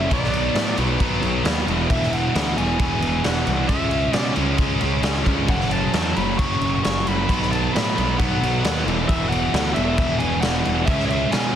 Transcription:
Already playing: distorted electric guitar F#2
0.09 picked electric bass B1, overdriven electric guitar B2 F#3 B3, kick, crash
0.13 lead electric guitar D5
0.24 snare
0.33 crash
0.55 picked electric bass A2, overdriven electric guitar B2 F#3 B3, snare, crash
0.77 picked electric bass B1, overdriven electric guitar B2 F#3 B3, crash
0.99 picked electric bass B1, overdriven electric guitar B2 F#3 B3, kick, crash
1.21 picked electric bass B1, crash
1.44 picked electric bass D#2, overdriven electric guitar B2 F#3 B3, snare, crash
1.66 picked electric bass E1, overdriven electric guitar E2 B2 E3, crash
1.90 picked electric bass E1, overdriven electric guitar E2 B2 E3, lead electric guitar E5, kick, crash
2.02 snare
2.13 lead electric guitar F#5, crash
2.33 picked electric bass D2, overdriven electric guitar E2 B2 E3, snare, crash
2.56 picked electric bass E1, overdriven electric guitar E2 B2 E3, lead electric guitar G#5, crash
2.79 picked electric bass E1, overdriven electric guitar E2 B2 E3, lead electric guitar G#5, kick, crash
3.01 picked electric bass E1, crash
3.24 picked electric bass E1, overdriven electric guitar E2 B2 E3, lead electric guitar F#5, snare, crash
3.46 picked electric bass C2, overdriven electric guitar E2 B2 E3, crash
3.68 picked electric bass C#2, overdriven electric guitar C#3 G#3 C#4, lead electric guitar E5, kick, crash
3.91 crash
4.13 picked electric bass B2, overdriven electric guitar C#3 G#3 C#4, lead electric guitar D5, snare, crash
4.34 picked electric bass C#2, overdriven electric guitar C#3 G#3 C#4, crash
4.58 picked electric bass C#2, overdriven electric guitar C#3 G#3 C#4, kick, crash
4.81 picked electric bass C#2, crash
5.03 picked electric bass C#2, overdriven electric guitar C#3 G#3 C#4, snare, crash
5.26 picked electric bass C#2, overdriven electric guitar C#3 G#3 C#4, kick, crash
5.48 picked electric bass F#1, overdriven electric guitar F#2 C#3 F#3, lead electric guitar F#5, kick, crash
5.60 snare
5.71 lead electric guitar A5, crash
5.93 picked electric bass E2, overdriven electric guitar F#2 C#3 F#3, snare, crash
6.16 picked electric bass F#1, overdriven electric guitar F#2 C#3 F#3, lead electric guitar B5, crash
6.38 picked electric bass F#1, overdriven electric guitar F#2 C#3 F#3, lead electric guitar C#6, kick, crash
6.61 picked electric bass F#1, crash
6.84 picked electric bass F#1, overdriven electric guitar F#2 C#3 F#3, lead electric guitar C#6, snare, crash
7.06 picked electric bass F#1, overdriven electric guitar F#2 C#3 F#3, lead electric guitar B5, crash
7.29 picked electric bass B1, overdriven electric guitar B2 F#3 B3, kick, crash
7.42 snare
7.52 lead electric guitar A5, crash
7.74 picked electric bass A2, overdriven electric guitar B2 F#3 B3, lead electric guitar B5, snare, crash
7.98 picked electric bass B1, overdriven electric guitar B2 F#3 B3, crash
8.18 picked electric bass B1, overdriven electric guitar B2 F#3 B3, lead electric guitar F#5, kick, crash
8.42 picked electric bass B1, crash
8.64 picked electric bass D#2, overdriven electric guitar B2 F#3 B3, snare, crash
8.86 picked electric bass E1, overdriven electric guitar E2 B2 E3, crash
9.08 picked electric bass E1, overdriven electric guitar E2 B2 E3, lead electric guitar E5, kick, crash
9.29 lead electric guitar F#5, crash
9.54 picked electric bass D2, overdriven electric guitar E2 B2 E3, snare, crash
9.74 picked electric bass E1, overdriven electric guitar E2 B2 E3, lead electric guitar E5, crash
9.97 picked electric bass E1, overdriven electric guitar E2 B2 E3, kick, crash
10.19 picked electric bass E1, lead electric guitar G#5, crash
10.41 picked electric bass E1, overdriven electric guitar E2 B2 E3, lead electric guitar F#5, snare, crash
10.65 picked electric bass E1, overdriven electric guitar E2 B2 E3, crash
10.85 picked electric bass C#2, overdriven electric guitar C#3 G#3 C#4, lead electric guitar E5, kick, crash
11.00 snare
11.06 lead electric guitar C#5 E5
11.10 crash
11.30 picked electric bass B2, overdriven electric guitar C#3 G#3 C#4, lead electric guitar G#5, snare, crash

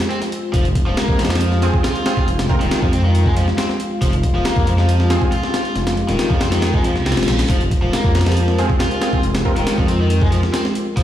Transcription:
Already playing: analog synth pad G#3 F4 C5
0.10 overdriven electric guitar C4, closed hi-hat
0.22 snare, closed hi-hat
0.32 closed hi-hat
0.53 detuned saw bass F1, overdriven electric guitar F3, analog synth pad F5, kick, closed hi-hat
0.65 closed hi-hat
0.75 kick, closed hi-hat
0.87 detuned saw bass D#1, overdriven electric guitar F3
0.97 overdriven electric guitar A#3, snare, closed hi-hat
1.08 detuned saw bass F2, kick
1.19 overdriven electric guitar F3, snare, closed hi-hat
1.25 snare, closed hi-hat
1.30 overdriven electric guitar F3, snare, closed hi-hat
1.35 snare, closed hi-hat
1.41 closed hi-hat
1.52 snare
1.62 synth stab C4 F4 G#4, snare, closed hi-hat
1.74 kick
1.84 overdriven electric guitar F4, snare, closed hi-hat
1.95 closed hi-hat
2.06 synth stab C4 F4 G#4, snare, closed hi-hat
2.17 kick
2.28 detuned saw bass F1, closed hi-hat
2.39 snare, closed hi-hat
2.49 synth stab C4 F4 A#4, kick
2.61 detuned saw bass D#1, overdriven electric guitar D#3, closed hi-hat
2.71 snare, closed hi-hat
2.82 detuned saw bass F2, overdriven electric guitar F3, kick
2.93 overdriven electric guitar C4, closed hi-hat
3.04 overdriven electric guitar D#3
3.15 closed hi-hat
3.26 overdriven electric guitar G#3, kick
3.37 overdriven electric guitar F3, closed hi-hat
3.48 snare
3.58 overdriven electric guitar C4, snare, closed hi-hat
3.69 snare
3.80 closed hi-hat
4.02 detuned saw bass F1, overdriven electric guitar F3, kick, closed hi-hat
4.13 closed hi-hat
4.23 kick, closed hi-hat
4.35 detuned saw bass D#1, overdriven electric guitar F3
4.45 overdriven electric guitar A#3, snare, closed hi-hat
4.56 detuned saw bass F2, kick
4.67 overdriven electric guitar F3, closed hi-hat
4.78 overdriven electric guitar F3, snare
4.89 closed hi-hat
5.00 snare
5.10 synth stab C4 F4 G#4, snare, closed hi-hat
5.22 kick
5.32 overdriven electric guitar F4, closed hi-hat
5.43 snare
5.54 snare, closed hi-hat
5.65 closed hi-hat
5.75 detuned saw bass F1, snare, closed hi-hat
5.87 snare, closed hi-hat
5.97 closed hi-hat
6.09 detuned saw bass D#1, overdriven electric guitar D#3, snare, closed hi-hat
6.19 snare, closed hi-hat
6.30 detuned saw bass F2, overdriven electric guitar F3, kick
6.41 overdriven electric guitar C4, snare, closed hi-hat
6.52 overdriven electric guitar D#3, snare, closed hi-hat
6.62 snare, closed hi-hat, reverse cymbal
6.74 overdriven electric guitar G#3, kick
6.84 overdriven electric guitar F3, closed hi-hat
6.96 detuned saw bass C2, snare
7.06 detuned saw bass C2, overdriven electric guitar C4, snare, closed hi-hat
7.12 snare, closed hi-hat
7.17 detuned saw bass D#1, snare, closed hi-hat
7.23 snare, closed hi-hat
7.28 detuned saw bass A#1, snare, closed hi-hat
7.39 snare, closed hi-hat
7.49 detuned saw bass F1, overdriven electric guitar F3, analog synth pad A#4, kick, closed hi-hat
7.61 closed hi-hat
7.71 kick, closed hi-hat
7.83 detuned saw bass D#1, overdriven electric guitar F3
7.93 overdriven electric guitar A#3, snare, closed hi-hat
8.04 detuned saw bass F2, kick
8.15 overdriven electric guitar F3, snare, closed hi-hat
8.21 snare, closed hi-hat
8.26 overdriven electric guitar F3, snare, closed hi-hat
8.32 snare, closed hi-hat
8.37 closed hi-hat
8.48 snare
8.58 synth stab C4 F4 G#4, snare, closed hi-hat
8.70 kick
8.80 overdriven electric guitar F4, snare, closed hi-hat
8.91 closed hi-hat
9.02 synth stab C4 F4 G#4, snare, closed hi-hat
9.13 kick
9.23 detuned saw bass F1, closed hi-hat
9.35 snare, closed hi-hat
9.45 synth stab C4 F4 A#4, kick
9.56 detuned saw bass D#1, overdriven electric guitar D#3, closed hi-hat
9.67 snare, closed hi-hat
9.78 detuned saw bass F2, overdriven electric guitar F3, kick
9.88 overdriven electric guitar C4, closed hi-hat
10.00 overdriven electric guitar D#3
10.10 closed hi-hat
10.22 overdriven electric guitar G#3, kick
10.32 overdriven electric guitar F3, closed hi-hat
10.43 snare
10.53 overdriven electric guitar C4, snare, closed hi-hat
10.65 snare
10.75 closed hi-hat
10.97 detuned saw bass F1, overdriven electric guitar F3, analog synth pad C5, kick, closed hi-hat

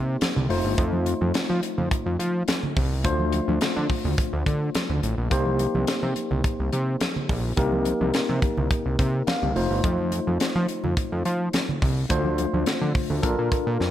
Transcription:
Already playing: analog synth bass C3, tine electric piano A#3 D#4 G4 C5
0.21 snare, closed hi-hat, muted conga, high conga
0.36 analog synth bass C2, low conga
0.49 analog synth bass F1, tine electric piano A3 D#4 F4 C5, open hi-hat
0.65 analog synth bass G1
0.78 analog synth bass F2, kick, closed hi-hat, muted conga
0.93 high conga
1.06 closed hi-hat, high conga
1.21 analog synth bass F2, high conga
1.34 analog synth bass F3, snare, closed hi-hat, muted conga
1.50 analog synth bass F3, high conga
1.63 closed hi-hat
1.78 analog synth bass F2, low conga
1.91 kick, closed hi-hat, muted conga
2.06 analog synth bass F2
2.19 analog synth bass F3, closed hi-hat, muted conga
2.48 snare, closed hi-hat, high conga
2.63 low conga
2.77 analog synth bass C2, kick, open hi-hat, muted conga
3.04 analog synth bass D2, tine electric piano A3 D4 F4 C5, kick, closed hi-hat, muted conga
3.20 high conga
3.33 closed hi-hat, muted conga, high conga
3.48 analog synth bass D2, high conga
3.61 analog synth bass D3, snare, closed hi-hat
3.76 analog synth bass D3, high conga
3.89 kick, open hi-hat, muted conga
4.05 analog synth bass D2, low conga
4.18 kick, closed hi-hat, muted conga
4.33 analog synth bass D2
4.46 analog synth bass D3, kick, closed hi-hat
4.75 snare, closed hi-hat, high conga
4.90 analog synth bass D2, low conga
5.03 analog synth bass A1, closed hi-hat, muted conga
5.18 analog synth bass A#1
5.30 analog synth bass C2, tine electric piano A#3 D#4 G4 C5, kick, closed hi-hat, muted conga
5.46 high conga
5.59 closed hi-hat, muted conga, high conga
5.75 analog synth bass C2, high conga
5.87 analog synth bass C3, snare, closed hi-hat
6.03 analog synth bass C3, high conga
6.16 closed hi-hat, muted conga
6.31 analog synth bass C2, low conga
6.44 kick, closed hi-hat
6.60 analog synth bass C2
6.73 analog synth bass C3, closed hi-hat, muted conga
7.01 snare, closed hi-hat, high conga
7.16 low conga
7.29 analog synth bass A#1, kick, open hi-hat
7.57 analog synth bass C2, tine electric piano A#3 D#4 G4 A#4, kick, closed hi-hat, muted conga
7.72 high conga
7.85 closed hi-hat, muted conga, high conga
8.01 analog synth bass C2, high conga
8.14 analog synth bass C3, snare, closed hi-hat
8.29 analog synth bass C3, high conga
8.42 kick, closed hi-hat, muted conga
8.57 analog synth bass C2, low conga
8.71 kick, closed hi-hat, muted conga
8.86 analog synth bass C2
8.99 analog synth bass C3, kick, closed hi-hat
9.27 tine electric piano F5, snare, closed hi-hat, muted conga, high conga
9.43 analog synth bass C2, low conga
9.55 analog synth bass F1, tine electric piano A3 D#4 F4 C5, open hi-hat
9.71 analog synth bass G1
9.84 analog synth bass F2, kick, closed hi-hat, muted conga
9.98 high conga
10.12 closed hi-hat, muted conga, high conga
10.27 analog synth bass F2, high conga
10.40 analog synth bass F3, snare, closed hi-hat, muted conga
10.55 analog synth bass F3, high conga
10.68 closed hi-hat
10.84 analog synth bass F2, low conga
10.97 kick, closed hi-hat
11.12 analog synth bass F2
11.25 analog synth bass F3, closed hi-hat, muted conga
11.53 snare, closed hi-hat, high conga
11.69 low conga
11.82 analog synth bass C2, kick, open hi-hat
12.09 analog synth bass D2, tine electric piano A3 D4 F4 C5, kick, closed hi-hat, muted conga
12.25 high conga
12.38 closed hi-hat, muted conga, high conga
12.54 analog synth bass D2, high conga
12.66 analog synth bass D3, snare, closed hi-hat, muted conga
12.81 analog synth bass D3, high conga
12.95 kick, open hi-hat, low conga
13.10 analog synth bass D2, low conga
13.22 analog synth bass A#1, tine electric piano D4 F4 A4 A#4, kick, closed hi-hat, muted conga
13.39 analog synth bass A#2
13.52 kick, closed hi-hat
13.67 analog synth bass A#2
13.80 analog synth bass F2, snare, high conga

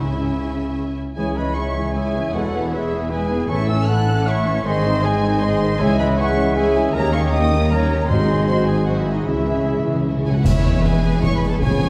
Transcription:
Already playing: cello section C#3
0.00 double bass section C#2, timpani C#3, viola section C#4, trumpet E4, violin section E4 E5 G#5
1.16 cello section C#2, double bass section C#2, trombone section E3 G#3, viola section G#3, french horn section C#4, violin section E4 G#5, trumpet G#4, clarinet C#5, flute C#5
1.20 french horn section E4
1.37 viola section E3, violin section C#4 G#4 B5, trumpet B4, flute D#5
1.56 viola section G#3, violin section E4 C#6, trumpet C#5, flute E5
1.76 viola section E3, violin section C#4 G#4
1.94 viola section G#3, violin section E4 G#5, trumpet G#4, flute C#5, clarinet E5
2.14 viola section E3, violin section C#4 G#4
2.33 double bass section E1, cello section E2, trombone section E3 G#3, viola section G#3, french horn section B3 E4, violin section E4 F#5, trumpet F#4, flute A4, clarinet C#5
2.52 viola section E3 B3, violin section B3 G#4
2.72 viola section G#3, violin section E4 E5, trumpet E4, flute G#4, clarinet B4
2.91 viola section E3 B3, violin section B3 G#4
3.10 viola section G#3, violin section E4 G#5, trumpet G#4, flute B4
3.31 viola section E3 B3, violin section B3 G#4
3.49 double bass section A1, cello section A2, trombone section E3 A3, viola section A3, french horn section C#4 E4, violin section E4 C#6, clarinet A4, trumpet C#5, flute E5
3.69 viola section E3 C#4, violin section C#4 A4 E6, trumpet E5, flute G#5
3.88 viola section A3, violin section E4 F#6, clarinet A4, trumpet F#5, flute A5
4.08 viola section E3 C#4, violin section C#4 A4
4.27 viola section A3, violin section E4 C#6, trumpet C#5, clarinet C#5, flute E5
4.46 viola section E3 C#4, violin section C#4 A4
4.65 double bass section G#1, cello section G#2, trombone section D#3 G#3, french horn section G#3 G#4, viola section G#3, violin section C4 G#4 C6, trumpet C5, clarinet D#5, flute D#5
4.85 viola section D#3 C4, violin section D#4 C5
5.03 viola section G#3, violin section C4 G#4 G#5, trumpet G#4, flute C5
5.23 viola section D#3 C4, violin section D#4 C5
5.41 viola section G#3, violin section C4 G#4 C6, trumpet C5, flute D#5
5.61 viola section D#3 C4, violin section D#4 C5
5.80 double bass section C#2, cello section C#2, timpani C#3, trombone section E3 G#3, viola section G#3, french horn section C#4 G#4, violin section E4 G#4 G#5, trumpet G#4, flute C#5, clarinet E5
5.99 viola section E3, violin section C#4 E4 B5, trumpet B4, flute D#5
6.19 viola section G#3, violin section E4 G#4 C#6, trumpet C#5, flute E5, clarinet F#5
6.38 viola section E3, violin section C#4 E4
6.55 viola section G#3, violin section E4 G#4 G#5, trumpet G#4, flute C#5, clarinet E5
6.75 viola section E3, violin section C#4 E4
6.94 cello section D#2, double bass section D#2, trombone section D#3 A#3, viola section G3, violin section A#3 D#4 A#5, french horn section G4, trumpet A#4, flute C#5, clarinet D#5
7.13 viola section D#3 A#3, violin section C#4 C#6, trumpet C#5, flute F5
7.17 violin section G4
7.32 viola section G3, violin section A#3 D#4 D#6, trumpet D#5, flute G5
7.51 viola section D#3 A#3, violin section G4
7.55 violin section C#4
7.70 viola section G3, trumpet A#4, flute C#5, violin section A#5
7.75 violin section A#3 D#4
7.90 viola section D#3 A#3, violin section C#4 G4
8.08 double bass section G#1, cello section G#2, timpani G#2, viola section F#3 G#3, trombone section G#3, french horn section C4 F#4, violin section C4 F#4 C6, trumpet C5, clarinet C5, flute D#5
8.29 viola section D#3 F#3, violin section D#4 G#4
8.47 viola section F#3 G#3, violin section C4 F#4 C6, trumpet C5, clarinet C5, flute D#5
8.67 viola section D#3 F#3, violin section D#4 G#4 G#5, trumpet G#4, flute C5
8.86 viola section F#3 G#3, violin section C4 F#4 F#5, trumpet F#4, flute C5, clarinet D#5
8.99 trumpet E4, flute G#4, violin section E5
9.07 viola section D#3 F#3, violin section D#4 G#4
9.12 trumpet D#4, flute F#4, violin section D#5
9.25 double bass section C#2, cello section C#3, timpani C#3, trombone section E3, viola section G#3, french horn section C#4 E4, trumpet E4, violin section E4 E5, flute G#4, clarinet E5
9.34 timpani C#3
9.41 timpani C#3
9.46 timpani C#3, viola section E3, violin section C#4 G#4
9.56 timpani C#3
9.64 timpani C#3, viola section G#3, violin section E4
9.71 timpani C#3
9.79 timpani C#3
9.85 timpani C#3, viola section E3, violin section C#4 G#4
9.94 timpani C#3
10.03 timpani C#3, viola section G#3, violin section E4
10.11 timpani C#3
10.17 timpani C#3
10.25 timpani C#3, viola section E3, violin section C#4 G#4 G#5
10.32 timpani C#3, violin section F#4 F#5
10.44 double bass section E1, timpani E2, cello section E2, trombone section E3 G#3, violin section E4 E5, viola section C#5, concert bass drum, snare, crash
10.65 snare
10.75 snare
10.83 violin section G#4 G#5, viola section B4, concert bass drum, snare
11.23 viola section G#4, violin section C#5 C#6, concert bass drum, snare
11.36 violin section B4 B5
11.43 snare
11.49 violin section A4 A5
11.60 double bass section C#2, cello section C#3, trombone section F3 B3, violin section G#4 G#5, viola section C#5, concert bass drum, snare

